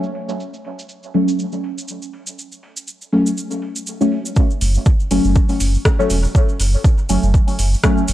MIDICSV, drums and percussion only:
0, 0, Header, 1, 2, 480
1, 0, Start_track
1, 0, Key_signature, 3, "minor"
1, 0, Tempo, 495868
1, 385, Time_signature, 4, 2, 24, 8
1, 7873, End_track
2, 0, Start_track
2, 0, Title_t, "Drums"
2, 31, Note_on_c, 9, 69, 35
2, 128, Note_off_c, 9, 69, 0
2, 145, Note_on_c, 9, 46, 64
2, 242, Note_off_c, 9, 46, 0
2, 280, Note_on_c, 9, 69, 73
2, 377, Note_off_c, 9, 69, 0
2, 388, Note_on_c, 9, 69, 50
2, 485, Note_off_c, 9, 69, 0
2, 519, Note_on_c, 9, 69, 34
2, 616, Note_off_c, 9, 69, 0
2, 625, Note_on_c, 9, 46, 71
2, 722, Note_off_c, 9, 46, 0
2, 764, Note_on_c, 9, 69, 71
2, 861, Note_off_c, 9, 69, 0
2, 861, Note_on_c, 9, 69, 60
2, 957, Note_off_c, 9, 69, 0
2, 998, Note_on_c, 9, 69, 35
2, 1095, Note_off_c, 9, 69, 0
2, 1105, Note_on_c, 9, 46, 62
2, 1202, Note_off_c, 9, 46, 0
2, 1242, Note_on_c, 9, 69, 63
2, 1339, Note_off_c, 9, 69, 0
2, 1347, Note_on_c, 9, 69, 55
2, 1444, Note_off_c, 9, 69, 0
2, 1475, Note_on_c, 9, 69, 32
2, 1479, Note_on_c, 9, 46, 28
2, 1572, Note_off_c, 9, 69, 0
2, 1576, Note_off_c, 9, 46, 0
2, 1585, Note_on_c, 9, 46, 72
2, 1682, Note_off_c, 9, 46, 0
2, 1724, Note_on_c, 9, 69, 71
2, 1820, Note_off_c, 9, 69, 0
2, 1820, Note_on_c, 9, 69, 62
2, 1917, Note_off_c, 9, 69, 0
2, 1956, Note_on_c, 9, 69, 36
2, 2053, Note_off_c, 9, 69, 0
2, 2065, Note_on_c, 9, 46, 64
2, 2162, Note_off_c, 9, 46, 0
2, 2194, Note_on_c, 9, 69, 72
2, 2291, Note_off_c, 9, 69, 0
2, 2311, Note_on_c, 9, 69, 54
2, 2408, Note_off_c, 9, 69, 0
2, 2438, Note_on_c, 9, 69, 32
2, 2535, Note_off_c, 9, 69, 0
2, 2545, Note_on_c, 9, 46, 76
2, 2642, Note_off_c, 9, 46, 0
2, 2678, Note_on_c, 9, 69, 70
2, 2775, Note_off_c, 9, 69, 0
2, 2783, Note_on_c, 9, 69, 61
2, 2880, Note_off_c, 9, 69, 0
2, 2918, Note_on_c, 9, 69, 33
2, 3015, Note_off_c, 9, 69, 0
2, 3025, Note_on_c, 9, 46, 61
2, 3122, Note_off_c, 9, 46, 0
2, 3159, Note_on_c, 9, 69, 66
2, 3256, Note_off_c, 9, 69, 0
2, 3267, Note_on_c, 9, 69, 63
2, 3363, Note_off_c, 9, 69, 0
2, 3395, Note_on_c, 9, 69, 36
2, 3398, Note_on_c, 9, 46, 30
2, 3492, Note_off_c, 9, 69, 0
2, 3495, Note_off_c, 9, 46, 0
2, 3505, Note_on_c, 9, 46, 74
2, 3602, Note_off_c, 9, 46, 0
2, 3637, Note_on_c, 9, 69, 74
2, 3733, Note_off_c, 9, 69, 0
2, 3743, Note_on_c, 9, 69, 64
2, 3840, Note_off_c, 9, 69, 0
2, 3883, Note_on_c, 9, 69, 34
2, 3979, Note_off_c, 9, 69, 0
2, 3985, Note_on_c, 9, 46, 65
2, 4082, Note_off_c, 9, 46, 0
2, 4119, Note_on_c, 9, 69, 72
2, 4216, Note_off_c, 9, 69, 0
2, 4223, Note_on_c, 9, 69, 47
2, 4225, Note_on_c, 9, 36, 109
2, 4319, Note_off_c, 9, 69, 0
2, 4322, Note_off_c, 9, 36, 0
2, 4360, Note_on_c, 9, 69, 24
2, 4456, Note_off_c, 9, 69, 0
2, 4465, Note_on_c, 9, 46, 78
2, 4466, Note_on_c, 9, 69, 81
2, 4561, Note_off_c, 9, 46, 0
2, 4563, Note_off_c, 9, 69, 0
2, 4592, Note_on_c, 9, 69, 39
2, 4689, Note_off_c, 9, 69, 0
2, 4702, Note_on_c, 9, 69, 46
2, 4705, Note_on_c, 9, 36, 116
2, 4798, Note_off_c, 9, 69, 0
2, 4802, Note_off_c, 9, 36, 0
2, 4840, Note_on_c, 9, 69, 24
2, 4937, Note_off_c, 9, 69, 0
2, 4944, Note_on_c, 9, 46, 67
2, 4949, Note_on_c, 9, 69, 87
2, 5041, Note_off_c, 9, 46, 0
2, 5045, Note_off_c, 9, 69, 0
2, 5076, Note_on_c, 9, 69, 37
2, 5173, Note_off_c, 9, 69, 0
2, 5179, Note_on_c, 9, 69, 46
2, 5185, Note_on_c, 9, 36, 111
2, 5276, Note_off_c, 9, 69, 0
2, 5282, Note_off_c, 9, 36, 0
2, 5312, Note_on_c, 9, 69, 26
2, 5318, Note_on_c, 9, 46, 31
2, 5409, Note_off_c, 9, 69, 0
2, 5415, Note_off_c, 9, 46, 0
2, 5423, Note_on_c, 9, 69, 87
2, 5424, Note_on_c, 9, 46, 79
2, 5520, Note_off_c, 9, 69, 0
2, 5521, Note_off_c, 9, 46, 0
2, 5557, Note_on_c, 9, 69, 41
2, 5654, Note_off_c, 9, 69, 0
2, 5665, Note_on_c, 9, 36, 112
2, 5665, Note_on_c, 9, 37, 91
2, 5668, Note_on_c, 9, 69, 48
2, 5762, Note_off_c, 9, 36, 0
2, 5762, Note_off_c, 9, 37, 0
2, 5764, Note_off_c, 9, 69, 0
2, 5811, Note_on_c, 9, 69, 24
2, 5904, Note_off_c, 9, 69, 0
2, 5904, Note_on_c, 9, 69, 80
2, 5905, Note_on_c, 9, 46, 72
2, 6001, Note_off_c, 9, 69, 0
2, 6002, Note_off_c, 9, 46, 0
2, 6044, Note_on_c, 9, 69, 39
2, 6141, Note_off_c, 9, 69, 0
2, 6145, Note_on_c, 9, 36, 113
2, 6150, Note_on_c, 9, 69, 52
2, 6242, Note_off_c, 9, 36, 0
2, 6247, Note_off_c, 9, 69, 0
2, 6281, Note_on_c, 9, 69, 28
2, 6377, Note_off_c, 9, 69, 0
2, 6385, Note_on_c, 9, 46, 84
2, 6393, Note_on_c, 9, 69, 95
2, 6482, Note_off_c, 9, 46, 0
2, 6490, Note_off_c, 9, 69, 0
2, 6522, Note_on_c, 9, 69, 40
2, 6618, Note_off_c, 9, 69, 0
2, 6625, Note_on_c, 9, 36, 120
2, 6631, Note_on_c, 9, 69, 48
2, 6722, Note_off_c, 9, 36, 0
2, 6728, Note_off_c, 9, 69, 0
2, 6758, Note_on_c, 9, 69, 24
2, 6855, Note_off_c, 9, 69, 0
2, 6865, Note_on_c, 9, 46, 68
2, 6866, Note_on_c, 9, 69, 86
2, 6962, Note_off_c, 9, 46, 0
2, 6963, Note_off_c, 9, 69, 0
2, 6999, Note_on_c, 9, 69, 35
2, 7096, Note_off_c, 9, 69, 0
2, 7105, Note_on_c, 9, 36, 114
2, 7109, Note_on_c, 9, 69, 49
2, 7202, Note_off_c, 9, 36, 0
2, 7206, Note_off_c, 9, 69, 0
2, 7238, Note_on_c, 9, 46, 32
2, 7244, Note_on_c, 9, 69, 28
2, 7335, Note_off_c, 9, 46, 0
2, 7341, Note_off_c, 9, 69, 0
2, 7345, Note_on_c, 9, 46, 84
2, 7349, Note_on_c, 9, 69, 87
2, 7442, Note_off_c, 9, 46, 0
2, 7445, Note_off_c, 9, 69, 0
2, 7488, Note_on_c, 9, 69, 41
2, 7584, Note_off_c, 9, 69, 0
2, 7585, Note_on_c, 9, 36, 120
2, 7585, Note_on_c, 9, 37, 91
2, 7586, Note_on_c, 9, 69, 51
2, 7682, Note_off_c, 9, 36, 0
2, 7682, Note_off_c, 9, 37, 0
2, 7683, Note_off_c, 9, 69, 0
2, 7721, Note_on_c, 9, 69, 27
2, 7817, Note_off_c, 9, 69, 0
2, 7821, Note_on_c, 9, 69, 95
2, 7825, Note_on_c, 9, 46, 72
2, 7873, Note_off_c, 9, 46, 0
2, 7873, Note_off_c, 9, 69, 0
2, 7873, End_track
0, 0, End_of_file